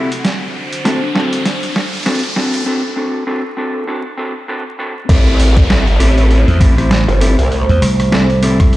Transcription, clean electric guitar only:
0.85 0.99 C4 medium
0.85 0.99 D4 medium
0.85 0.99 F#4 medium
0.85 0.99 A4 medium
1.15 1.43 C4 medium
1.15 1.43 D4 medium
1.15 1.43 F#4 medium
1.15 1.43 A4 medium
2.05 2.20 C4 medium
2.05 2.20 D4 medium
2.05 2.20 F#4 medium
2.05 2.20 A4 loud
2.36 2.65 C4 medium
2.36 2.65 D4 medium
2.36 2.65 F#4 medium
2.36 2.65 A4 medium
2.66 2.81 C4 medium
2.66 2.81 D4 medium
2.66 2.81 F#4 medium
2.66 2.81 A4 loud
2.96 3.25 C4 medium
2.96 3.25 D4 medium
2.96 3.25 F#4 medium
2.96 3.25 A4 loud
3.27 3.42 C4 loud
3.27 3.42 D4 medium
3.27 3.42 F#4 medium
3.27 3.42 A4 loud
3.57 3.86 C4 medium
3.57 3.86 D4 medium
3.57 3.86 F#4 medium
3.57 3.86 A4 medium
3.87 4.02 C4 loud
3.87 4.02 D4 medium
3.87 4.02 F#4 medium
3.87 4.02 A4 loud
4.17 4.33 C4 loud
4.17 4.33 D4 medium
4.17 4.33 F#4 medium
4.17 4.33 A4 loud
4.48 4.63 C4 loud
4.48 4.63 D4 medium
4.48 4.63 F#4 medium
4.48 4.63 A4 loud
4.79 4.93 C4 loud
4.79 4.93 D4 medium
4.79 4.93 F#4 loud
4.79 4.93 A4 loud
5.09 5.65 C4 loud
5.09 5.65 E4 medium
5.09 5.65 G4 medium
5.09 5.65 A4 loud
5.69 5.84 C4 medium
5.69 5.84 E4 medium
5.69 5.84 G4 medium
5.69 5.84 A4 loud
5.99 6.57 C4 medium
5.99 6.57 E4 medium
5.99 6.57 G4 medium
5.99 6.57 A4 medium
6.60 6.75 C4 medium
6.60 6.75 E4 medium
6.60 6.75 G4 medium
6.60 6.75 A4 loud
6.78 6.89 C4 medium
6.78 6.89 E4 medium
6.78 6.89 G4 medium
6.78 6.89 C5 medium
7.21 7.36 C4 medium
7.21 7.36 E4 medium
7.21 7.36 G4 medium
7.21 7.36 A4 medium
8.12 8.27 C4 medium
8.12 8.27 E4 medium
8.12 8.27 G4 medium
8.12 8.27 A4 loud
8.42 8.77 C4 medium
8.42 8.77 E4 medium
8.42 8.77 G4 medium
8.42 8.77 A4 loud

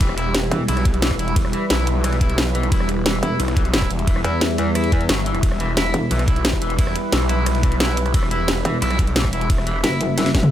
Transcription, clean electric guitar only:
0.01 0.12 E3 medium
0.18 0.34 E4 medium
0.52 0.63 E3 medium
0.68 0.85 E4 medium
1.02 1.14 E3 medium
1.19 1.35 E4 medium
1.53 1.65 E3 medium
1.70 1.86 E4 medium
2.04 2.15 E3 medium
2.21 2.37 E4 medium
2.55 2.66 E3 medium
2.72 2.88 E4 medium
3.06 3.17 E3 medium
3.23 3.39 E4 medium
3.57 3.68 E3 medium
3.74 3.90 E4 medium
4.07 4.19 E3 medium
4.24 4.41 E4 medium
4.58 4.70 E3 medium
4.75 4.91 E4 medium
4.92 5.04 E3 medium
5.09 5.21 F#3 medium
5.26 5.37 E3 medium
5.60 5.71 E3 medium
5.77 5.93 E4 medium
6.11 6.22 E3 medium
6.28 6.44 E4 medium
6.62 6.73 E3 medium
6.79 6.95 E4 medium
7.13 7.24 E3 medium
7.29 7.46 E4 medium
7.63 7.75 E3 medium
7.80 7.96 E4 medium
8.14 8.26 E3 medium
8.31 8.47 E4 medium
8.65 8.76 E3 medium
8.82 8.98 E4 medium
9.16 9.27 E3 medium
9.33 9.49 E4 medium
9.67 9.78 E3 medium
9.84 10.00 E4 medium
10.18 10.29 E3 medium

